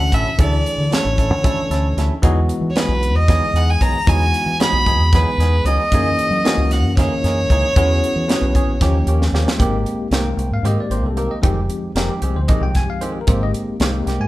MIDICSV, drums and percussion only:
0, 0, Header, 1, 2, 480
1, 0, Start_track
1, 0, Tempo, 526316
1, 348, Time_signature, 7, 3, 24, 8
1, 13021, End_track
2, 0, Start_track
2, 0, Title_t, "Drums"
2, 112, Note_on_c, 9, 36, 67
2, 113, Note_on_c, 9, 42, 63
2, 203, Note_off_c, 9, 36, 0
2, 204, Note_off_c, 9, 42, 0
2, 353, Note_on_c, 9, 36, 110
2, 354, Note_on_c, 9, 42, 81
2, 444, Note_off_c, 9, 36, 0
2, 445, Note_off_c, 9, 42, 0
2, 604, Note_on_c, 9, 42, 57
2, 695, Note_off_c, 9, 42, 0
2, 842, Note_on_c, 9, 42, 77
2, 852, Note_on_c, 9, 38, 106
2, 933, Note_off_c, 9, 42, 0
2, 943, Note_off_c, 9, 38, 0
2, 1077, Note_on_c, 9, 36, 64
2, 1086, Note_on_c, 9, 42, 57
2, 1168, Note_off_c, 9, 36, 0
2, 1178, Note_off_c, 9, 42, 0
2, 1316, Note_on_c, 9, 36, 106
2, 1320, Note_on_c, 9, 42, 79
2, 1407, Note_off_c, 9, 36, 0
2, 1411, Note_off_c, 9, 42, 0
2, 1560, Note_on_c, 9, 42, 58
2, 1570, Note_on_c, 9, 38, 34
2, 1651, Note_off_c, 9, 42, 0
2, 1661, Note_off_c, 9, 38, 0
2, 1804, Note_on_c, 9, 42, 56
2, 1814, Note_on_c, 9, 38, 32
2, 1895, Note_off_c, 9, 42, 0
2, 1905, Note_off_c, 9, 38, 0
2, 2034, Note_on_c, 9, 36, 113
2, 2034, Note_on_c, 9, 42, 80
2, 2125, Note_off_c, 9, 42, 0
2, 2126, Note_off_c, 9, 36, 0
2, 2274, Note_on_c, 9, 42, 54
2, 2365, Note_off_c, 9, 42, 0
2, 2514, Note_on_c, 9, 42, 75
2, 2524, Note_on_c, 9, 38, 100
2, 2605, Note_off_c, 9, 42, 0
2, 2615, Note_off_c, 9, 38, 0
2, 2761, Note_on_c, 9, 42, 60
2, 2853, Note_off_c, 9, 42, 0
2, 2995, Note_on_c, 9, 36, 100
2, 2999, Note_on_c, 9, 42, 80
2, 3009, Note_on_c, 9, 38, 34
2, 3086, Note_off_c, 9, 36, 0
2, 3090, Note_off_c, 9, 42, 0
2, 3100, Note_off_c, 9, 38, 0
2, 3244, Note_on_c, 9, 42, 64
2, 3336, Note_off_c, 9, 42, 0
2, 3475, Note_on_c, 9, 36, 67
2, 3482, Note_on_c, 9, 42, 67
2, 3566, Note_off_c, 9, 36, 0
2, 3573, Note_off_c, 9, 42, 0
2, 3715, Note_on_c, 9, 36, 115
2, 3723, Note_on_c, 9, 42, 87
2, 3806, Note_off_c, 9, 36, 0
2, 3814, Note_off_c, 9, 42, 0
2, 3958, Note_on_c, 9, 42, 60
2, 4049, Note_off_c, 9, 42, 0
2, 4197, Note_on_c, 9, 42, 82
2, 4207, Note_on_c, 9, 38, 108
2, 4288, Note_off_c, 9, 42, 0
2, 4298, Note_off_c, 9, 38, 0
2, 4436, Note_on_c, 9, 36, 70
2, 4445, Note_on_c, 9, 42, 60
2, 4527, Note_off_c, 9, 36, 0
2, 4536, Note_off_c, 9, 42, 0
2, 4676, Note_on_c, 9, 36, 103
2, 4681, Note_on_c, 9, 42, 78
2, 4691, Note_on_c, 9, 38, 34
2, 4767, Note_off_c, 9, 36, 0
2, 4772, Note_off_c, 9, 42, 0
2, 4782, Note_off_c, 9, 38, 0
2, 4928, Note_on_c, 9, 42, 60
2, 4938, Note_on_c, 9, 38, 34
2, 5019, Note_off_c, 9, 42, 0
2, 5029, Note_off_c, 9, 38, 0
2, 5159, Note_on_c, 9, 42, 61
2, 5250, Note_off_c, 9, 42, 0
2, 5398, Note_on_c, 9, 36, 106
2, 5401, Note_on_c, 9, 42, 77
2, 5489, Note_off_c, 9, 36, 0
2, 5492, Note_off_c, 9, 42, 0
2, 5642, Note_on_c, 9, 42, 54
2, 5733, Note_off_c, 9, 42, 0
2, 5885, Note_on_c, 9, 42, 68
2, 5895, Note_on_c, 9, 38, 106
2, 5976, Note_off_c, 9, 42, 0
2, 5986, Note_off_c, 9, 38, 0
2, 6119, Note_on_c, 9, 42, 55
2, 6129, Note_on_c, 9, 38, 32
2, 6210, Note_off_c, 9, 42, 0
2, 6220, Note_off_c, 9, 38, 0
2, 6359, Note_on_c, 9, 36, 101
2, 6363, Note_on_c, 9, 42, 73
2, 6373, Note_on_c, 9, 38, 34
2, 6450, Note_off_c, 9, 36, 0
2, 6454, Note_off_c, 9, 42, 0
2, 6464, Note_off_c, 9, 38, 0
2, 6605, Note_on_c, 9, 42, 57
2, 6615, Note_on_c, 9, 38, 34
2, 6696, Note_off_c, 9, 42, 0
2, 6706, Note_off_c, 9, 38, 0
2, 6840, Note_on_c, 9, 36, 71
2, 6845, Note_on_c, 9, 42, 64
2, 6932, Note_off_c, 9, 36, 0
2, 6936, Note_off_c, 9, 42, 0
2, 7079, Note_on_c, 9, 36, 109
2, 7081, Note_on_c, 9, 42, 80
2, 7171, Note_off_c, 9, 36, 0
2, 7172, Note_off_c, 9, 42, 0
2, 7330, Note_on_c, 9, 42, 57
2, 7421, Note_off_c, 9, 42, 0
2, 7563, Note_on_c, 9, 42, 82
2, 7574, Note_on_c, 9, 38, 100
2, 7655, Note_off_c, 9, 42, 0
2, 7665, Note_off_c, 9, 38, 0
2, 7797, Note_on_c, 9, 36, 72
2, 7802, Note_on_c, 9, 42, 65
2, 7888, Note_off_c, 9, 36, 0
2, 7894, Note_off_c, 9, 42, 0
2, 8034, Note_on_c, 9, 42, 83
2, 8035, Note_on_c, 9, 36, 98
2, 8044, Note_on_c, 9, 38, 35
2, 8125, Note_off_c, 9, 42, 0
2, 8126, Note_off_c, 9, 36, 0
2, 8135, Note_off_c, 9, 38, 0
2, 8272, Note_on_c, 9, 42, 68
2, 8363, Note_off_c, 9, 42, 0
2, 8409, Note_on_c, 9, 38, 58
2, 8500, Note_off_c, 9, 38, 0
2, 8525, Note_on_c, 9, 38, 71
2, 8617, Note_off_c, 9, 38, 0
2, 8646, Note_on_c, 9, 38, 91
2, 8737, Note_off_c, 9, 38, 0
2, 8753, Note_on_c, 9, 36, 101
2, 8758, Note_on_c, 9, 42, 76
2, 8844, Note_off_c, 9, 36, 0
2, 8849, Note_off_c, 9, 42, 0
2, 8995, Note_on_c, 9, 42, 54
2, 9086, Note_off_c, 9, 42, 0
2, 9225, Note_on_c, 9, 42, 71
2, 9235, Note_on_c, 9, 38, 98
2, 9316, Note_off_c, 9, 42, 0
2, 9326, Note_off_c, 9, 38, 0
2, 9473, Note_on_c, 9, 42, 55
2, 9564, Note_off_c, 9, 42, 0
2, 9715, Note_on_c, 9, 42, 75
2, 9806, Note_off_c, 9, 42, 0
2, 9950, Note_on_c, 9, 42, 56
2, 10041, Note_off_c, 9, 42, 0
2, 10187, Note_on_c, 9, 42, 55
2, 10278, Note_off_c, 9, 42, 0
2, 10427, Note_on_c, 9, 42, 78
2, 10428, Note_on_c, 9, 36, 107
2, 10518, Note_off_c, 9, 42, 0
2, 10520, Note_off_c, 9, 36, 0
2, 10666, Note_on_c, 9, 42, 57
2, 10757, Note_off_c, 9, 42, 0
2, 10905, Note_on_c, 9, 42, 78
2, 10915, Note_on_c, 9, 38, 93
2, 10996, Note_off_c, 9, 42, 0
2, 11006, Note_off_c, 9, 38, 0
2, 11144, Note_on_c, 9, 42, 64
2, 11235, Note_off_c, 9, 42, 0
2, 11384, Note_on_c, 9, 42, 77
2, 11389, Note_on_c, 9, 36, 97
2, 11476, Note_off_c, 9, 42, 0
2, 11480, Note_off_c, 9, 36, 0
2, 11625, Note_on_c, 9, 42, 61
2, 11629, Note_on_c, 9, 36, 67
2, 11635, Note_on_c, 9, 38, 33
2, 11716, Note_off_c, 9, 42, 0
2, 11721, Note_off_c, 9, 36, 0
2, 11726, Note_off_c, 9, 38, 0
2, 11869, Note_on_c, 9, 42, 61
2, 11961, Note_off_c, 9, 42, 0
2, 12103, Note_on_c, 9, 42, 80
2, 12108, Note_on_c, 9, 36, 111
2, 12194, Note_off_c, 9, 42, 0
2, 12200, Note_off_c, 9, 36, 0
2, 12352, Note_on_c, 9, 42, 60
2, 12443, Note_off_c, 9, 42, 0
2, 12584, Note_on_c, 9, 42, 74
2, 12594, Note_on_c, 9, 38, 101
2, 12675, Note_off_c, 9, 42, 0
2, 12685, Note_off_c, 9, 38, 0
2, 12833, Note_on_c, 9, 42, 55
2, 12843, Note_on_c, 9, 38, 34
2, 12924, Note_off_c, 9, 42, 0
2, 12934, Note_off_c, 9, 38, 0
2, 13021, End_track
0, 0, End_of_file